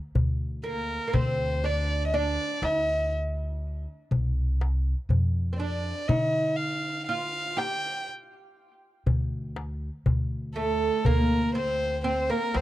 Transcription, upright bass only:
0.15 D2
1.14 D2
2.62 D2
4.11 C2
5.09 F2
6.09 D3
9.06 D2
10.06 D2
11.06 D2
12.55 D2

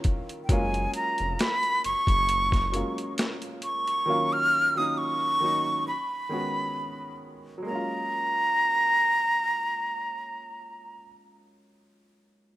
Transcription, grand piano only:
Already playing: D#3 F#3 A#3 C#4 E4 F4
0.49 F#3 G#3 A#3 C#4
0.53 F4
2.72 F#3 G#3 A#3 C#4
2.76 F4
4.06 D#3 F#3 A#3 C#4
4.10 F4
4.75 D#3 F#3 A#3 C#4
4.80 D#4
5.40 D#3 F#3 A#3 C#4
5.45 D#4
6.29 D#3 G#3 B3 C#4
6.33 F#4
7.58 F#3
7.63 G#3 A#3
7.71 C#4
7.75 F4

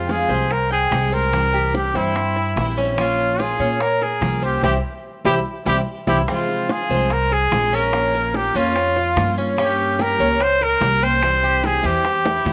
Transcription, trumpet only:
Already playing: F4
0.11 G#4
0.52 A#4
0.72 G#4
1.14 A#4
1.76 G4
1.96 E4
2.99 F4
3.41 G#4
3.82 A#4
4.03 G#4
4.45 G4
4.64 G4
5.26 G4
5.68 G4
6.09 G4
6.31 F4
6.72 G#4
7.13 A#4
7.33 G#4
7.75 A#4
8.36 G4
8.57 F4
9.61 G4
10.02 A#4
10.42 C5
10.63 A#4
11.04 C5
11.66 G#4
11.86 G4

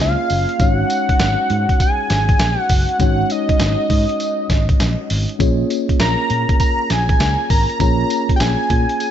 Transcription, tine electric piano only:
Already playing: A#3 C#4 F4 G#4 C#5
0.59 G#3 C#4 D#4 F#4 C#5
2.99 G#3 C#4 D#4 F#4 C#5
5.39 A#3 C#4 F4 G#4 C#5
7.79 A#3 C#4 F4 G#4 C#5

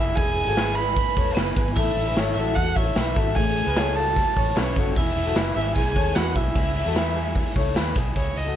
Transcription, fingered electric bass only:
Already playing: F#1
0.17 E1
0.47 G#1
1.17 E1
1.36 F#1
1.57 G#1
1.76 A1
1.95 A1
2.15 G#1
2.35 A1
2.56 E2
2.77 A1
2.96 B1
3.16 G#1
3.36 A1
3.67 C#2
4.37 A1
4.57 B1
4.76 F#1
4.96 E1
5.16 E1
5.36 F#1
5.56 G#1
5.75 B1
5.96 D#2
6.16 E2
6.36 B1
6.56 C#2
6.86 E2
7.56 C#2
7.76 D#2
7.96 B1
8.16 C#2
8.36 C#2

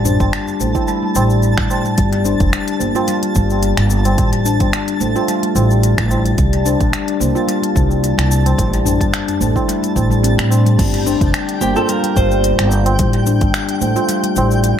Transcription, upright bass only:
Already playing: A1
0.20 G1
0.60 A1
1.15 A1
1.98 G1
2.40 F1
2.81 G1
3.36 G1
3.78 G1
4.18 A1
4.60 G1
5.01 A1
5.55 A1
5.98 A1
6.38 C2
6.81 A#1
7.21 C2
7.76 C2
8.18 C2
8.58 A1
9.01 G1
9.41 A1
9.96 A1
10.38 A2
10.79 G1
11.21 F1
11.62 G1
12.16 G1
12.58 G1
12.99 A1
13.41 G1
13.81 A1
14.36 A1

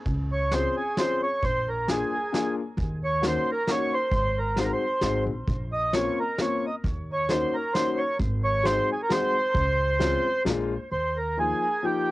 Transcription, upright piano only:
0.52 C4 C#4 F4 G#4
0.97 C4 C#4 F4 G#4
1.87 A#3 D4 F4 G#4
2.32 A#3 D4 F4 G#4
3.21 A#3 C#4 D#4 F#4
3.68 A#3 C#4 D#4 F#4
4.56 G#3 C4 D#4 F#4
5.01 G#3 C4 D#4 F#4
5.93 A#3 C4 C#4 F4
6.40 A#3 C4 C#4 F4
7.29 A#3 C#4 D#4 F#4
7.74 A#3 C#4 D#4 F#4
8.64 G#3 C4 D#4 F#4
9.09 G#3 C4 D#4 F#4
9.99 G#3 C4 C#4 F4
10.44 G#3 A#3 D4 F4
11.37 F3 A#3 D#4 F4
11.83 F3 A#3 D#4 F4

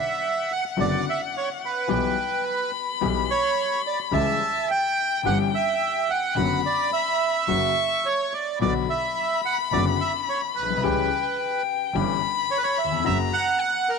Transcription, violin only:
Already playing: F#5
1.90 G5
2.44 B5
4.14 A5
4.68 G5
6.36 B5
7.48 C#6
8.60 B5
10.83 G5
11.39 G5
11.95 B5
13.06 A#5
13.60 F#5

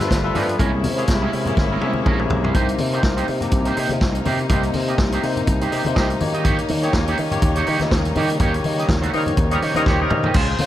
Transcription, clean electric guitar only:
0.09 muted clean electric guitar stroke
0.23 muted clean electric guitar stroke
0.34 F3 B3 E4 A4
0.47 muted clean electric guitar stroke
0.58 G#3 C#4 E4 A#4
0.73 muted clean electric guitar stroke
0.83 muted clean electric guitar stroke
0.97 G#3 C#4 E4 C5
1.08 muted clean electric guitar stroke
1.21 G#3 C#4 E4 A#4
1.32 muted clean electric guitar stroke
1.46 muted clean electric guitar stroke
1.57 muted clean electric guitar stroke
1.70 G#3 C#4 E4 A#4
1.81 G#3 C#4 E4 A#4
1.95 muted clean electric guitar stroke
2.06 G#3 C#4 E4 A#4
2.20 muted clean electric guitar stroke
2.30 muted clean electric guitar stroke
2.43 G#3 C#4 E4 C5
2.54 A#3 D#4 G4 C5
2.68 muted clean electric guitar stroke
2.79 muted clean electric guitar stroke
2.92 A#3 D#4 G4 C5
3.03 muted clean electric guitar stroke
3.16 A#3 D#4 G4 C5
3.27 muted clean electric guitar stroke
3.41 muted clean electric guitar stroke
3.52 muted clean electric guitar stroke
3.65 A#3 D#4 G4 C5
3.76 A#3 D#4 G4 C5
3.90 muted clean electric guitar stroke
4.01 muted clean electric guitar stroke
4.15 muted clean electric guitar stroke
4.25 A#3 D#4 G4 C5
4.39 muted clean electric guitar stroke
4.49 A#3 D#4 G4 C5
4.63 muted clean electric guitar stroke
4.74 muted clean electric guitar stroke
4.88 A#3 D#4 G4 D#5
4.98 muted clean electric guitar stroke
5.13 A#3 D#4 G4 C5
5.23 muted clean electric guitar stroke
5.37 muted clean electric guitar stroke
5.47 muted clean electric guitar stroke
5.61 A#3 D#4 G4 C5
5.71 A#3 D#4 G4 C5
5.85 muted clean electric guitar stroke
5.95 A#3 D#4 G4 C5
6.09 muted clean electric guitar stroke
6.19 muted clean electric guitar stroke
6.33 A#3 D#4 G4 D#5
6.44 A#3 D#4 G4 C#5
6.58 muted clean electric guitar stroke
6.69 muted clean electric guitar stroke
6.82 A#3 D#4 G4 C#5
7.08 A#3 D#4 G4 C#5
7.18 muted clean electric guitar stroke
7.32 muted clean electric guitar stroke
7.42 muted clean electric guitar stroke
7.56 A#3 D#4 G4 C#5
7.67 A#3 D#4 G4 C#5
7.80 muted clean electric guitar stroke
7.91 muted clean electric guitar stroke
8.06 muted clean electric guitar stroke
8.16 A#3 D#4 G4 C#5
8.30 muted clean electric guitar stroke
8.40 A#3 D#4 G4 C#5
8.54 muted clean electric guitar stroke
8.64 muted clean electric guitar stroke
8.78 A#3 D#4 G4 D#5
8.88 muted clean electric guitar stroke
9.01 A#3 D#4 G4 C#5
9.12 muted clean electric guitar stroke
9.26 muted clean electric guitar stroke
9.37 muted clean electric guitar stroke
9.51 A#3 D#4 G4 C#5
9.62 A#3 D#4 G4 C#5
9.76 muted clean electric guitar stroke
9.86 A#3 D#4 G4 C#5
10.00 muted clean electric guitar stroke
10.11 muted clean electric guitar stroke
10.24 A#3 D#4 G4 D#5
10.35 G#3 C#4 F4 C5
10.48 muted clean electric guitar stroke
10.59 muted clean electric guitar stroke

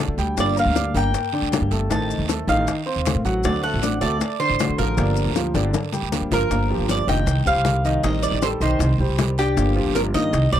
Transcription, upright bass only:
0.08 D3
0.18 D2
0.37 G1
0.66 D2
0.94 G1
1.42 D2
1.61 G2
1.71 G1
1.90 A1
2.19 D#2
2.47 A1
2.96 D#2
3.15 A2
3.25 A1
3.44 D2
3.74 A1
4.02 D2
4.50 A1
4.69 D3
4.79 A1
4.97 G1
5.26 D2
5.54 G1
6.03 D2
6.21 G2
6.31 G1
6.50 G1
6.78 G1
7.07 F1
7.26 C2
7.46 C2
7.55 C2
8.03 A1
8.32 A1
8.61 B1
8.79 C2
8.98 C2
9.08 C2
9.57 G1
9.85 G1
10.14 G2
10.33 C2
10.52 C2

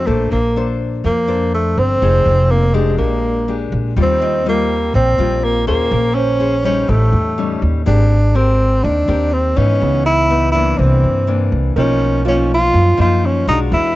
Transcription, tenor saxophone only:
0.07 A3
0.32 A#3
1.06 A#3
1.54 A3
1.79 C4
2.51 A#3
2.75 G#3
2.99 A#3
4.02 C4
4.49 A#3
4.95 C4
5.44 A#3
5.68 A#3
6.15 C#4
6.65 C#4
6.90 A3
7.87 D4
8.36 C4
8.84 D4
9.33 C4
9.57 C#4
10.06 E4
10.52 E4
10.78 C4
11.79 C#4
12.28 C#4
12.54 F4
13.01 F4
13.25 C#4
13.49 D#4
13.74 E4

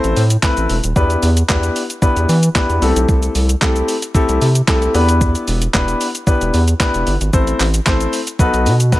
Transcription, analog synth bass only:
0.04 A1
0.17 A2
0.57 A1
0.70 E1
0.84 D#1
0.96 E2
1.23 E2
1.50 E2
2.16 E2
2.29 E3
2.69 E2
2.82 C2
2.96 B1
3.08 C2
3.35 C2
3.62 C2
4.29 C2
4.41 C3
4.68 C2
4.95 E2
5.48 E1
5.74 E1
6.42 E1
6.54 E2
6.95 E1
7.07 G1
7.21 G#1
7.33 A1
7.60 A1
7.87 A1
8.39 B1
8.53 B1
8.66 B2

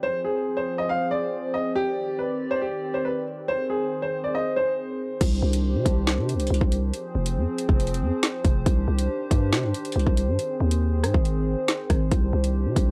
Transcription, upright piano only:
0.03 C5
0.25 G#4
0.57 C5
0.78 D#5
0.89 F5
1.11 D5
1.54 D#5
1.75 G4
2.19 B4
2.51 C5
2.62 G4
2.94 C5
3.05 B4
3.48 C5
3.70 G#4
4.02 C5
4.24 D5
4.35 D#5
4.56 C5

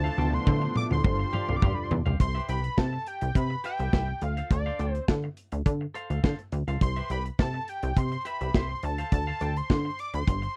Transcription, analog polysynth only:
0.18 B3 E4 F4 A4
1.04 D4 F4 A4 C5
1.33 D4 F4 A4 D5

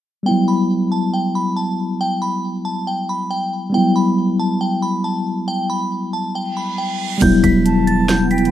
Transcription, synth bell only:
0.26 G5
0.48 B5
0.92 A5
1.13 G5
1.35 B5
1.56 A5
2.01 G5
2.22 B5
2.65 A5
2.87 G5
3.09 B5
3.31 G5
3.74 G5
3.96 B5
4.39 A5
4.61 G5
4.82 B5
5.04 A5
5.48 G5
5.70 B5
6.13 A5
6.35 G5
6.57 B5
6.78 G5
7.22 G6
7.44 B6
7.87 A6
8.09 G6
8.31 B6

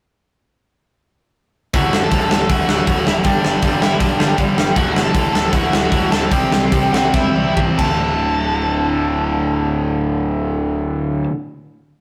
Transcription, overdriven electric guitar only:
1.74 D2 A2 D3
1.93 D2 A2 D3
2.12 D2 A2 D3
2.31 D2 A2 D3
2.50 D2 A2 D3
2.68 D2 A2 D3
2.87 D2 A2 D3
3.07 D2 A2 D3
3.25 G2 D3 G3
3.44 G2 D3 G3
3.62 G2 D3 G3
3.81 G2 D3 G3
3.99 G2 D3 G3
4.19 G2 D3 G3
4.38 G2 D3 G3
4.57 G2 D3 G3
4.76 D2 A2 D3
4.95 D2 A2 D3
5.14 D2 A2 D3
5.34 D2 A2 D3
5.53 D2 A2 D3
5.73 D2 A2 D3
5.93 D2 A2 D3
6.12 D2 A2 D3
6.31 C3 G3 C4
6.51 C3 G3 C4
6.72 C3 G3 C4
6.93 C3 G3 C4
7.14 C3 G3 C4
7.35 C3 G3 C4
7.57 C3 G3 C4
7.79 D2 A2 D3

